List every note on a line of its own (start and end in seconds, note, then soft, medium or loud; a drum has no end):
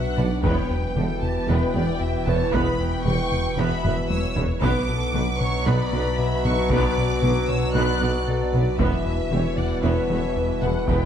0.00 0.46 B1 medium
0.00 0.40 B2 medium
0.00 0.40 F#3 medium
0.00 0.40 B3 medium
0.00 0.40 D4 medium
0.00 0.40 B4 medium
0.00 0.18 E5 medium
0.00 0.43 F#5 medium
0.17 0.25 B1 medium
0.17 0.29 B1 medium
0.17 0.33 B2 medium
0.17 0.27 B2 soft
0.17 0.25 D4 medium
0.17 0.25 B4 medium
0.17 0.44 D5 medium
0.17 taiko mid medium
0.42 0.52 E1 medium
0.42 0.55 E1 medium
0.42 4.64 E1 medium
0.42 0.60 E2 medium
0.42 0.53 E2 medium
0.42 4.45 B2 medium
0.42 4.45 E3 medium
0.42 4.61 E3 medium
0.42 4.45 B3 medium
0.42 4.57 B3 medium
0.42 0.68 B3 medium
0.42 4.62 E4 medium
0.42 4.45 B4 medium
0.42 0.68 B4 medium
0.42 4.58 B4 medium
0.42 0.70 C#5 medium
0.42 1.20 G5 medium
0.42 taiko loud
0.70 0.86 E2 medium
0.70 0.97 B4 medium
0.96 1.04 E1 medium
0.96 1.07 E1 medium
0.96 1.05 E2 medium
0.96 1.12 E3 medium
0.96 1.04 G3 soft
0.96 1.04 G4 medium
0.96 1.22 A4 medium
0.96 taiko mid medium
1.22 1.38 E2 medium
1.22 1.49 G4 medium
1.22 1.49 A5 medium
1.22 taiko mid soft
1.48 1.56 E1 medium
1.48 1.59 E1 medium
1.48 1.64 E2 medium
1.48 1.57 E2 medium
1.48 1.73 B3 medium
1.48 1.73 B4 medium
1.48 1.75 B4 medium
1.48 2.27 G5 medium
1.74 1.85 E1 medium
1.74 1.83 E1 medium
1.74 1.83 E2 medium
1.74 1.91 E3 medium
1.74 1.82 B3 medium
1.74 1.83 B4 medium
1.74 2.01 D5 medium
2.01 2.16 E2 medium
2.01 2.27 E5 medium
2.26 2.37 E1 medium
2.26 2.35 E1 medium
2.26 2.43 E2 medium
2.26 2.35 E2 medium
2.26 2.35 B3 medium
2.26 2.34 B4 medium
2.26 2.53 C#5 medium
2.26 2.53 A5 medium
2.26 taiko mid soft
2.53 2.63 E1 medium
2.53 2.61 E1 medium
2.53 2.69 E2 medium
2.53 2.62 E2 medium
2.53 2.77 B3 medium
2.53 2.77 B4 medium
2.53 2.80 B4 medium
2.53 3.04 B5 medium
2.53 taiko loud
2.79 2.95 E2 medium
2.79 3.58 G5 medium
3.05 3.14 E1 medium
3.05 3.16 E1 medium
3.05 3.14 E2 medium
3.05 3.21 E3 medium
3.05 3.14 G3 medium
3.05 3.14 G4 medium
3.05 3.56 C#6 loud
3.05 taiko mid medium
3.32 3.48 E2 medium
3.32 taiko mid soft
3.57 3.65 E1 medium
3.57 3.69 E1 medium
3.57 3.74 E2 medium
3.57 3.68 E2 loud
3.57 3.82 B3 medium
3.57 3.82 B4 medium
3.57 4.10 E5 medium
3.57 4.09 B5 loud
3.83 3.92 E1 medium
3.83 3.95 E1 medium
3.83 3.93 E2 medium
3.83 4.00 E3 medium
3.83 3.91 B3 medium
3.83 3.91 B4 medium
3.83 taiko low-mid medium
4.10 4.26 E2 medium
4.10 4.62 C#5 medium
4.10 4.35 E6 medium
4.10 taiko high medium
4.36 4.46 E1 medium
4.36 4.45 E1 medium
4.36 4.52 E2 medium
4.36 4.46 E2 medium
4.36 4.44 B3 medium
4.36 4.44 B4 medium
4.36 taiko low loud
4.60 4.69 B1 medium
4.60 4.72 B1 medium
4.60 8.81 B1 medium
4.60 8.75 B2 medium
4.60 4.71 B2 loud
4.60 4.78 B2 medium
4.60 8.79 F#3 medium
4.60 8.76 F#3 medium
4.60 4.85 B3 loud
4.60 8.75 B3 medium
4.60 8.79 D4 medium
4.60 4.85 B4 medium
4.60 8.75 B4 medium
4.60 4.89 B4 medium
4.60 5.36 D6 loud
4.60 taiko loud
4.88 5.04 B2 medium
4.88 5.14 A4 medium
5.14 5.24 B1 medium
5.14 5.22 B1 medium
5.14 5.23 B2 medium
5.14 5.22 F#3 medium
5.14 5.30 B3 medium
5.14 5.22 F#4 medium
5.14 5.41 B4 medium
5.14 taiko mid medium
5.39 5.56 B2 medium
5.39 5.66 C#5 medium
5.39 5.66 C#6 loud
5.39 taiko mid soft
5.66 5.74 B1 loud
5.66 5.77 B1 medium
5.66 5.82 B2 medium
5.66 5.75 B2 medium
5.66 5.91 B3 medium
5.66 5.91 B4 medium
5.66 6.18 D5 medium
5.66 6.44 B5 loud
5.92 6.00 B1 medium
5.92 6.03 B1 medium
5.92 6.01 B2 medium
5.92 6.08 B3 medium
5.92 6.02 B3 medium
5.92 6.01 B4 medium
6.18 6.34 B2 medium
6.18 6.70 E5 medium
6.44 6.52 B1 medium
6.44 6.55 B1 medium
6.44 6.60 B2 medium
6.44 6.53 B2 medium
6.44 6.53 B3 medium
6.44 6.54 B4 medium
6.44 6.71 C#6 loud
6.44 taiko mid medium
6.70 6.78 B1 medium
6.70 6.81 B1 medium
6.70 6.79 B2 medium
6.70 6.87 B2 medium
6.70 6.95 B3 loud
6.70 6.95 B4 loud
6.70 7.22 D5 medium
6.70 7.49 D6 loud
6.70 taiko loud
6.98 7.13 B2 medium
7.22 7.31 B1 medium
7.22 7.33 B1 medium
7.22 7.31 B2 medium
7.22 7.30 F#3 medium
7.22 7.39 B3 medium
7.22 7.30 F#4 medium
7.22 7.48 B4 medium
7.22 taiko mid medium
7.47 7.64 B2 medium
7.47 7.74 C#5 medium
7.47 7.74 E6 loud
7.47 taiko mid soft
7.73 7.83 B1 medium
7.73 7.86 B1 medium
7.73 7.90 B2 medium
7.73 7.84 B2 medium
7.73 7.99 B3 medium
7.73 7.99 B4 medium
7.73 8.26 D5 medium
7.73 8.25 F#6 loud
8.01 8.09 B1 medium
8.01 8.12 B1 medium
8.01 8.09 B2 medium
8.01 8.17 B3 medium
8.01 8.10 B3 medium
8.01 8.10 B4 medium
8.26 8.43 B2 medium
8.26 8.52 A4 medium
8.26 8.79 D5 medium
8.52 8.61 B1 medium
8.52 8.64 B1 medium
8.52 8.69 B2 medium
8.52 8.62 B2 medium
8.52 8.62 B3 medium
8.52 9.31 B4 medium
8.52 8.62 B4 medium
8.52 taiko mid medium
8.79 11.05 E1 medium
8.79 8.87 E1 medium
8.79 8.91 E1 medium
8.79 8.87 E2 medium
8.79 8.95 E2 medium
8.79 11.05 B2 medium
8.79 11.05 E3 medium
8.79 11.05 G3 medium
8.79 11.05 B3 medium
8.79 9.04 B3 medium
8.79 11.05 B3 medium
8.79 11.05 E4 medium
8.79 9.04 B4 medium
8.79 11.05 B4 medium
8.79 9.58 E5 loud
8.79 taiko loud
9.06 9.21 E2 medium
9.31 9.40 E1 medium
9.31 9.42 E1 medium
9.31 9.40 E2 medium
9.31 9.47 E3 medium
9.31 9.40 G3 medium
9.31 9.41 G4 medium
9.31 9.57 C#5 medium
9.31 taiko mid medium
9.57 9.73 E2 medium
9.57 9.83 D5 medium
9.57 9.83 F#5 medium
9.57 taiko mid soft
9.83 9.94 E1 medium
9.83 9.92 E1 medium
9.83 9.99 E2 loud
9.83 9.92 E2 medium
9.83 10.08 B3 medium
9.83 10.08 B4 medium
9.83 10.36 C#5 medium
9.83 10.60 E5 medium
10.10 10.18 E1 medium
10.10 10.21 E1 medium
10.10 10.19 E2 medium
10.10 10.26 E3 medium
10.10 10.19 B3 medium
10.10 10.19 B4 medium
10.37 10.52 E2 medium
10.37 10.63 B4 medium
10.62 10.70 E1 soft
10.62 10.73 E1 medium
10.62 10.77 E2 medium
10.62 10.71 E2 soft
10.62 10.71 B3 medium
10.62 10.88 A4 medium
10.62 10.71 B4 medium
10.62 10.88 F#5 medium
10.62 taiko mid soft
10.88 10.97 E1 medium
10.88 10.99 E1 medium
10.88 11.03 E2 medium
10.88 10.96 E2 medium
10.88 11.05 B3 medium
10.88 11.05 G4 medium
10.88 11.05 B4 medium
10.88 11.05 G5 medium
10.88 taiko loud